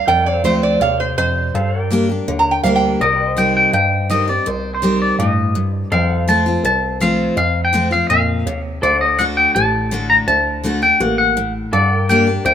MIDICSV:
0, 0, Header, 1, 6, 480
1, 0, Start_track
1, 0, Tempo, 364078
1, 108, Time_signature, 4, 2, 24, 8
1, 16534, End_track
2, 0, Start_track
2, 0, Title_t, "Clean electric guitar"
2, 0, Program_c, 0, 27
2, 3970, Note_on_c, 0, 75, 89
2, 4456, Note_on_c, 0, 79, 88
2, 4459, Note_off_c, 0, 75, 0
2, 4672, Note_off_c, 0, 79, 0
2, 4702, Note_on_c, 0, 79, 88
2, 4917, Note_off_c, 0, 79, 0
2, 4933, Note_on_c, 0, 79, 92
2, 5374, Note_off_c, 0, 79, 0
2, 5412, Note_on_c, 0, 75, 85
2, 5653, Note_off_c, 0, 75, 0
2, 5660, Note_on_c, 0, 74, 75
2, 5897, Note_off_c, 0, 74, 0
2, 5897, Note_on_c, 0, 72, 92
2, 6240, Note_off_c, 0, 72, 0
2, 6256, Note_on_c, 0, 72, 84
2, 6583, Note_off_c, 0, 72, 0
2, 6615, Note_on_c, 0, 74, 85
2, 6845, Note_off_c, 0, 74, 0
2, 6850, Note_on_c, 0, 75, 83
2, 7515, Note_off_c, 0, 75, 0
2, 7807, Note_on_c, 0, 77, 94
2, 8284, Note_off_c, 0, 77, 0
2, 8289, Note_on_c, 0, 81, 104
2, 8759, Note_off_c, 0, 81, 0
2, 8774, Note_on_c, 0, 81, 102
2, 9243, Note_off_c, 0, 81, 0
2, 9249, Note_on_c, 0, 77, 94
2, 9690, Note_off_c, 0, 77, 0
2, 9725, Note_on_c, 0, 77, 103
2, 10075, Note_off_c, 0, 77, 0
2, 10080, Note_on_c, 0, 79, 99
2, 10442, Note_off_c, 0, 79, 0
2, 10447, Note_on_c, 0, 77, 101
2, 10661, Note_off_c, 0, 77, 0
2, 10676, Note_on_c, 0, 77, 90
2, 11345, Note_off_c, 0, 77, 0
2, 11640, Note_on_c, 0, 74, 90
2, 11874, Note_off_c, 0, 74, 0
2, 11879, Note_on_c, 0, 75, 81
2, 12112, Note_on_c, 0, 78, 104
2, 12123, Note_off_c, 0, 75, 0
2, 12178, Note_off_c, 0, 78, 0
2, 12354, Note_on_c, 0, 79, 99
2, 12583, Note_off_c, 0, 79, 0
2, 12588, Note_on_c, 0, 81, 95
2, 13258, Note_off_c, 0, 81, 0
2, 13312, Note_on_c, 0, 82, 106
2, 13378, Note_off_c, 0, 82, 0
2, 13549, Note_on_c, 0, 81, 113
2, 14269, Note_off_c, 0, 81, 0
2, 14274, Note_on_c, 0, 79, 112
2, 14514, Note_off_c, 0, 79, 0
2, 14514, Note_on_c, 0, 78, 89
2, 14727, Note_off_c, 0, 78, 0
2, 14743, Note_on_c, 0, 78, 97
2, 15190, Note_off_c, 0, 78, 0
2, 15465, Note_on_c, 0, 74, 98
2, 15946, Note_on_c, 0, 79, 102
2, 15959, Note_off_c, 0, 74, 0
2, 16391, Note_off_c, 0, 79, 0
2, 16427, Note_on_c, 0, 79, 104
2, 16534, Note_off_c, 0, 79, 0
2, 16534, End_track
3, 0, Start_track
3, 0, Title_t, "Resonator guitar played with a steel bar"
3, 0, Program_c, 1, 25
3, 102, Note_on_c, 1, 79, 101
3, 339, Note_off_c, 1, 79, 0
3, 347, Note_on_c, 1, 74, 77
3, 582, Note_off_c, 1, 74, 0
3, 589, Note_on_c, 1, 72, 95
3, 823, Note_off_c, 1, 72, 0
3, 833, Note_on_c, 1, 74, 89
3, 1065, Note_off_c, 1, 74, 0
3, 1078, Note_on_c, 1, 77, 85
3, 1308, Note_off_c, 1, 77, 0
3, 1317, Note_on_c, 1, 72, 87
3, 1537, Note_off_c, 1, 72, 0
3, 1552, Note_on_c, 1, 72, 114
3, 2020, Note_off_c, 1, 72, 0
3, 3152, Note_on_c, 1, 82, 99
3, 3310, Note_off_c, 1, 82, 0
3, 3312, Note_on_c, 1, 79, 81
3, 3468, Note_off_c, 1, 79, 0
3, 3473, Note_on_c, 1, 77, 93
3, 3628, Note_off_c, 1, 77, 0
3, 3634, Note_on_c, 1, 79, 91
3, 3947, Note_off_c, 1, 79, 0
3, 16534, End_track
4, 0, Start_track
4, 0, Title_t, "Pedal steel guitar"
4, 0, Program_c, 2, 26
4, 97, Note_on_c, 2, 70, 61
4, 119, Note_on_c, 2, 74, 68
4, 128, Note_on_c, 2, 79, 63
4, 361, Note_off_c, 2, 70, 0
4, 361, Note_on_c, 2, 69, 61
4, 449, Note_off_c, 2, 74, 0
4, 449, Note_on_c, 2, 72, 68
4, 458, Note_off_c, 2, 79, 0
4, 458, Note_on_c, 2, 77, 63
4, 2010, Note_off_c, 2, 69, 0
4, 2021, Note_off_c, 2, 72, 0
4, 2026, Note_off_c, 2, 77, 0
4, 2045, Note_on_c, 2, 69, 70
4, 2055, Note_on_c, 2, 72, 62
4, 2070, Note_on_c, 2, 77, 67
4, 2309, Note_off_c, 2, 69, 0
4, 2309, Note_on_c, 2, 70, 70
4, 2385, Note_off_c, 2, 72, 0
4, 2385, Note_on_c, 2, 74, 62
4, 2399, Note_off_c, 2, 77, 0
4, 2399, Note_on_c, 2, 79, 67
4, 3945, Note_off_c, 2, 70, 0
4, 3950, Note_off_c, 2, 74, 0
4, 3957, Note_off_c, 2, 79, 0
4, 3974, Note_on_c, 2, 70, 67
4, 3981, Note_on_c, 2, 74, 72
4, 3995, Note_on_c, 2, 79, 71
4, 4245, Note_off_c, 2, 74, 0
4, 4245, Note_on_c, 2, 75, 72
4, 4303, Note_off_c, 2, 70, 0
4, 4303, Note_on_c, 2, 72, 67
4, 7769, Note_off_c, 2, 72, 0
4, 7773, Note_off_c, 2, 75, 0
4, 7780, Note_off_c, 2, 79, 0
4, 7800, Note_on_c, 2, 69, 69
4, 7813, Note_on_c, 2, 72, 69
4, 7829, Note_on_c, 2, 79, 69
4, 8159, Note_off_c, 2, 79, 0
4, 8159, Note_on_c, 2, 77, 69
4, 11596, Note_off_c, 2, 69, 0
4, 11603, Note_off_c, 2, 72, 0
4, 11611, Note_off_c, 2, 77, 0
4, 11629, Note_on_c, 2, 69, 69
4, 11639, Note_on_c, 2, 72, 70
4, 11657, Note_on_c, 2, 78, 69
4, 11969, Note_off_c, 2, 72, 0
4, 11969, Note_on_c, 2, 74, 70
4, 15424, Note_off_c, 2, 69, 0
4, 15430, Note_off_c, 2, 74, 0
4, 15439, Note_off_c, 2, 78, 0
4, 15460, Note_on_c, 2, 69, 65
4, 15477, Note_on_c, 2, 74, 74
4, 15486, Note_on_c, 2, 78, 77
4, 15724, Note_off_c, 2, 69, 0
4, 15724, Note_on_c, 2, 70, 65
4, 15749, Note_off_c, 2, 78, 0
4, 15749, Note_on_c, 2, 79, 77
4, 16534, Note_off_c, 2, 70, 0
4, 16534, Note_off_c, 2, 74, 0
4, 16534, Note_off_c, 2, 79, 0
4, 16534, End_track
5, 0, Start_track
5, 0, Title_t, "Steel-string acoustic guitar"
5, 0, Program_c, 3, 25
5, 108, Note_on_c, 3, 41, 79
5, 580, Note_on_c, 3, 53, 79
5, 588, Note_on_c, 3, 57, 89
5, 599, Note_on_c, 3, 60, 95
5, 607, Note_on_c, 3, 65, 93
5, 1023, Note_off_c, 3, 41, 0
5, 1043, Note_off_c, 3, 53, 0
5, 1046, Note_off_c, 3, 57, 0
5, 1052, Note_off_c, 3, 60, 0
5, 1056, Note_off_c, 3, 65, 0
5, 1068, Note_on_c, 3, 48, 92
5, 1558, Note_on_c, 3, 41, 86
5, 1985, Note_off_c, 3, 48, 0
5, 2013, Note_off_c, 3, 41, 0
5, 2043, Note_on_c, 3, 43, 82
5, 2512, Note_on_c, 3, 55, 80
5, 2524, Note_on_c, 3, 58, 94
5, 2532, Note_on_c, 3, 62, 99
5, 2543, Note_on_c, 3, 67, 115
5, 2743, Note_off_c, 3, 67, 0
5, 2745, Note_off_c, 3, 55, 0
5, 2751, Note_off_c, 3, 58, 0
5, 2755, Note_off_c, 3, 62, 0
5, 2758, Note_on_c, 3, 67, 56
5, 2788, Note_on_c, 3, 62, 51
5, 2953, Note_off_c, 3, 43, 0
5, 2988, Note_off_c, 3, 67, 0
5, 3003, Note_off_c, 3, 62, 0
5, 3006, Note_on_c, 3, 50, 97
5, 3476, Note_on_c, 3, 55, 82
5, 3489, Note_on_c, 3, 58, 82
5, 3499, Note_on_c, 3, 62, 98
5, 3509, Note_on_c, 3, 67, 107
5, 3915, Note_off_c, 3, 50, 0
5, 3934, Note_off_c, 3, 55, 0
5, 3940, Note_off_c, 3, 58, 0
5, 3945, Note_off_c, 3, 62, 0
5, 3950, Note_off_c, 3, 67, 0
5, 3972, Note_on_c, 3, 48, 84
5, 4438, Note_on_c, 3, 51, 90
5, 4449, Note_on_c, 3, 55, 94
5, 4460, Note_on_c, 3, 60, 93
5, 4470, Note_on_c, 3, 67, 92
5, 4878, Note_off_c, 3, 48, 0
5, 4895, Note_off_c, 3, 51, 0
5, 4901, Note_off_c, 3, 55, 0
5, 4906, Note_off_c, 3, 60, 0
5, 4911, Note_off_c, 3, 67, 0
5, 4923, Note_on_c, 3, 43, 90
5, 5400, Note_on_c, 3, 51, 85
5, 5410, Note_on_c, 3, 55, 87
5, 5419, Note_on_c, 3, 60, 106
5, 5425, Note_on_c, 3, 67, 102
5, 5621, Note_off_c, 3, 67, 0
5, 5630, Note_off_c, 3, 51, 0
5, 5636, Note_off_c, 3, 55, 0
5, 5636, Note_on_c, 3, 67, 61
5, 5640, Note_off_c, 3, 60, 0
5, 5667, Note_on_c, 3, 60, 47
5, 5834, Note_off_c, 3, 43, 0
5, 5869, Note_off_c, 3, 67, 0
5, 5881, Note_on_c, 3, 48, 89
5, 5884, Note_off_c, 3, 60, 0
5, 6355, Note_on_c, 3, 51, 88
5, 6367, Note_on_c, 3, 55, 95
5, 6373, Note_on_c, 3, 60, 101
5, 6383, Note_on_c, 3, 67, 99
5, 6793, Note_off_c, 3, 48, 0
5, 6814, Note_off_c, 3, 51, 0
5, 6820, Note_off_c, 3, 55, 0
5, 6823, Note_off_c, 3, 60, 0
5, 6828, Note_off_c, 3, 67, 0
5, 6851, Note_on_c, 3, 45, 88
5, 7302, Note_off_c, 3, 45, 0
5, 7320, Note_on_c, 3, 43, 92
5, 7776, Note_off_c, 3, 43, 0
5, 7802, Note_on_c, 3, 41, 87
5, 8274, Note_on_c, 3, 53, 88
5, 8285, Note_on_c, 3, 57, 87
5, 8292, Note_on_c, 3, 60, 100
5, 8301, Note_on_c, 3, 65, 109
5, 8500, Note_off_c, 3, 65, 0
5, 8507, Note_off_c, 3, 53, 0
5, 8512, Note_off_c, 3, 57, 0
5, 8516, Note_off_c, 3, 60, 0
5, 8516, Note_on_c, 3, 65, 70
5, 8543, Note_on_c, 3, 60, 51
5, 8712, Note_off_c, 3, 41, 0
5, 8748, Note_off_c, 3, 65, 0
5, 8761, Note_off_c, 3, 60, 0
5, 8762, Note_on_c, 3, 48, 92
5, 9235, Note_on_c, 3, 53, 84
5, 9246, Note_on_c, 3, 57, 103
5, 9256, Note_on_c, 3, 60, 99
5, 9260, Note_on_c, 3, 65, 101
5, 9672, Note_off_c, 3, 48, 0
5, 9692, Note_off_c, 3, 53, 0
5, 9698, Note_off_c, 3, 57, 0
5, 9703, Note_off_c, 3, 60, 0
5, 9705, Note_off_c, 3, 65, 0
5, 9717, Note_on_c, 3, 41, 83
5, 10187, Note_on_c, 3, 53, 94
5, 10200, Note_on_c, 3, 57, 98
5, 10208, Note_on_c, 3, 60, 99
5, 10220, Note_on_c, 3, 65, 108
5, 10412, Note_off_c, 3, 65, 0
5, 10422, Note_off_c, 3, 53, 0
5, 10427, Note_on_c, 3, 65, 55
5, 10429, Note_off_c, 3, 57, 0
5, 10433, Note_off_c, 3, 60, 0
5, 10457, Note_on_c, 3, 60, 54
5, 10628, Note_off_c, 3, 41, 0
5, 10662, Note_off_c, 3, 65, 0
5, 10677, Note_off_c, 3, 60, 0
5, 10678, Note_on_c, 3, 46, 88
5, 11132, Note_off_c, 3, 46, 0
5, 11164, Note_on_c, 3, 48, 88
5, 11615, Note_off_c, 3, 48, 0
5, 11644, Note_on_c, 3, 50, 82
5, 12093, Note_off_c, 3, 50, 0
5, 12109, Note_on_c, 3, 50, 85
5, 12120, Note_on_c, 3, 57, 97
5, 12129, Note_on_c, 3, 62, 88
5, 12141, Note_on_c, 3, 66, 107
5, 12566, Note_off_c, 3, 50, 0
5, 12572, Note_off_c, 3, 57, 0
5, 12576, Note_off_c, 3, 62, 0
5, 12582, Note_off_c, 3, 66, 0
5, 12600, Note_on_c, 3, 45, 97
5, 13069, Note_on_c, 3, 50, 98
5, 13081, Note_on_c, 3, 57, 103
5, 13089, Note_on_c, 3, 62, 96
5, 13100, Note_on_c, 3, 66, 99
5, 13506, Note_off_c, 3, 45, 0
5, 13525, Note_off_c, 3, 50, 0
5, 13531, Note_off_c, 3, 57, 0
5, 13535, Note_off_c, 3, 62, 0
5, 13541, Note_off_c, 3, 66, 0
5, 13550, Note_on_c, 3, 50, 94
5, 14005, Note_off_c, 3, 50, 0
5, 14021, Note_on_c, 3, 50, 92
5, 14033, Note_on_c, 3, 57, 93
5, 14043, Note_on_c, 3, 62, 99
5, 14054, Note_on_c, 3, 66, 109
5, 14249, Note_off_c, 3, 66, 0
5, 14255, Note_off_c, 3, 50, 0
5, 14261, Note_off_c, 3, 57, 0
5, 14265, Note_on_c, 3, 66, 65
5, 14266, Note_off_c, 3, 62, 0
5, 14293, Note_on_c, 3, 62, 48
5, 14496, Note_off_c, 3, 66, 0
5, 14508, Note_on_c, 3, 58, 91
5, 14511, Note_off_c, 3, 62, 0
5, 14963, Note_off_c, 3, 58, 0
5, 14988, Note_on_c, 3, 45, 94
5, 15442, Note_off_c, 3, 45, 0
5, 15464, Note_on_c, 3, 43, 83
5, 15942, Note_on_c, 3, 55, 86
5, 15955, Note_on_c, 3, 58, 101
5, 15960, Note_on_c, 3, 62, 108
5, 15972, Note_on_c, 3, 67, 107
5, 16157, Note_off_c, 3, 67, 0
5, 16173, Note_off_c, 3, 55, 0
5, 16173, Note_on_c, 3, 67, 56
5, 16180, Note_off_c, 3, 58, 0
5, 16182, Note_off_c, 3, 62, 0
5, 16205, Note_on_c, 3, 62, 48
5, 16375, Note_off_c, 3, 43, 0
5, 16408, Note_off_c, 3, 67, 0
5, 16422, Note_on_c, 3, 50, 97
5, 16425, Note_off_c, 3, 62, 0
5, 16534, Note_off_c, 3, 50, 0
5, 16534, End_track
6, 0, Start_track
6, 0, Title_t, "Tine electric piano"
6, 0, Program_c, 4, 4
6, 106, Note_on_c, 4, 41, 84
6, 532, Note_off_c, 4, 41, 0
6, 585, Note_on_c, 4, 38, 78
6, 997, Note_off_c, 4, 38, 0
6, 1068, Note_on_c, 4, 39, 87
6, 1479, Note_off_c, 4, 39, 0
6, 1550, Note_on_c, 4, 41, 83
6, 1961, Note_off_c, 4, 41, 0
6, 2038, Note_on_c, 4, 43, 85
6, 2885, Note_off_c, 4, 43, 0
6, 3001, Note_on_c, 4, 39, 86
6, 3408, Note_off_c, 4, 39, 0
6, 3480, Note_on_c, 4, 38, 86
6, 3888, Note_off_c, 4, 38, 0
6, 3960, Note_on_c, 4, 36, 82
6, 4807, Note_off_c, 4, 36, 0
6, 4924, Note_on_c, 4, 43, 87
6, 5769, Note_off_c, 4, 43, 0
6, 5886, Note_on_c, 4, 36, 84
6, 6730, Note_off_c, 4, 36, 0
6, 6839, Note_on_c, 4, 43, 87
6, 7686, Note_off_c, 4, 43, 0
6, 7803, Note_on_c, 4, 41, 84
6, 8648, Note_off_c, 4, 41, 0
6, 8757, Note_on_c, 4, 36, 83
6, 9604, Note_off_c, 4, 36, 0
6, 9718, Note_on_c, 4, 41, 86
6, 10563, Note_off_c, 4, 41, 0
6, 10683, Note_on_c, 4, 41, 81
6, 11088, Note_off_c, 4, 41, 0
6, 11160, Note_on_c, 4, 39, 81
6, 11565, Note_off_c, 4, 39, 0
6, 11642, Note_on_c, 4, 38, 89
6, 12484, Note_off_c, 4, 38, 0
6, 12598, Note_on_c, 4, 33, 86
6, 13440, Note_off_c, 4, 33, 0
6, 13552, Note_on_c, 4, 38, 87
6, 14396, Note_off_c, 4, 38, 0
6, 14511, Note_on_c, 4, 33, 91
6, 15354, Note_off_c, 4, 33, 0
6, 15465, Note_on_c, 4, 43, 90
6, 16310, Note_off_c, 4, 43, 0
6, 16427, Note_on_c, 4, 38, 89
6, 16534, Note_off_c, 4, 38, 0
6, 16534, End_track
0, 0, End_of_file